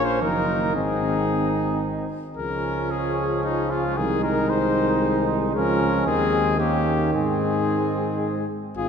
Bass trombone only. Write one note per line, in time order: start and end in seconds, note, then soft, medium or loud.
0.00 0.24 A#1 soft
0.23 0.78 F#1 soft
0.77 2.11 G#1 soft
2.37 3.99 C#2 soft
3.97 5.56 C2 soft
5.54 6.06 C#2 soft
6.07 7.12 D#2 medium
7.14 8.47 G#2 soft
8.77 8.89 G#1 soft